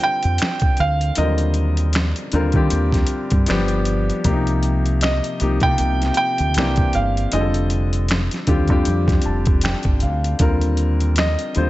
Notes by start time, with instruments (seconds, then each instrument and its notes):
Already playing: grand piano D3 G3 C4 F4 A#4 C5
0.04 felt piano G5
0.23 fingered electric bass F2, closed hi-hat
0.38 finger snap, closed hi-hat
0.42 snare
0.60 kick, closed hi-hat
0.77 fingered electric bass D2, felt piano F5, closed hi-hat
1.01 closed hi-hat
1.15 fingered electric bass D#2, grand piano D3 F#3 C4 F4 A#4, felt piano D#5, closed hi-hat
1.24 grand piano G3
1.38 closed hi-hat
1.54 closed hi-hat
1.77 closed hi-hat
1.93 finger snap, snare, closed hi-hat
2.16 closed hi-hat
2.32 fingered electric bass D#2, grand piano D3 G3 C4 F4 A#4, closed hi-hat
2.52 grand piano D3 G3 C4 F4, fingered electric bass D#3, kick, closed hi-hat
2.56 grand piano G4
2.70 fingered electric bass D#2, closed hi-hat
2.93 kick, snare, closed hi-hat
3.07 closed hi-hat
3.30 fingered electric bass G2, kick, closed hi-hat
3.46 fingered electric bass G1, grand piano F3 G3 B3 D4 G4, finger snap, closed hi-hat
3.51 snare
3.68 closed hi-hat
3.85 closed hi-hat
4.10 closed hi-hat
4.24 fingered electric bass C2, grand piano C3 F3 A#3 D4 G4, kick, closed hi-hat
4.33 grand piano D#4
4.47 closed hi-hat
4.63 closed hi-hat
4.86 closed hi-hat
5.01 felt piano D#5, finger snap, snare, closed hi-hat
5.24 closed hi-hat
5.40 fingered electric bass C2, grand piano C3 F3 A#3 D#4 G4, closed hi-hat
5.60 fingered electric bass C3, grand piano C3 F3 A#3 D#4 F4, felt piano G5, kick, closed hi-hat
5.78 fingered electric bass C2, closed hi-hat
6.02 snare, closed hi-hat
6.14 felt piano G5, closed hi-hat
6.38 fingered electric bass D2, closed hi-hat
6.54 fingered electric bass C2, grand piano E3 A#3 C4 D4 G4, finger snap, closed hi-hat
6.58 snare
6.76 kick, closed hi-hat
6.93 fingered electric bass G1, felt piano F5, closed hi-hat
7.17 closed hi-hat
7.32 fingered electric bass F1, grand piano D3 G3 C4 F4 G#4, felt piano D#5, closed hi-hat
7.41 grand piano A4
7.54 closed hi-hat
7.70 closed hi-hat
7.93 closed hi-hat
8.08 finger snap, snare, closed hi-hat
8.31 snare, closed hi-hat
8.47 fingered electric bass D#2, grand piano D3 G3 C4 F4 G4, kick, closed hi-hat
8.68 fingered electric bass F2, grand piano D3 G3 C4 F4 G4, kick, closed hi-hat
8.85 fingered electric bass F2, closed hi-hat
9.08 kick, snare, closed hi-hat
9.22 closed hi-hat
9.26 fingered electric bass F1, grand piano A5
9.46 kick, closed hi-hat
9.61 grand piano G5, finger snap, closed hi-hat
9.66 snare
9.83 fingered electric bass G1, kick, closed hi-hat
10.00 fingered electric bass D2, grand piano F5, closed hi-hat
10.24 closed hi-hat
10.39 fingered electric bass D#2, grand piano D3 G3 C4 F4 A#4, kick, closed hi-hat
10.61 closed hi-hat
10.77 closed hi-hat
11.00 closed hi-hat
11.16 felt piano D#5, finger snap, snare, closed hi-hat
11.39 closed hi-hat
11.55 fingered electric bass D#2, grand piano D3 G3 C4 F4 C5, closed hi-hat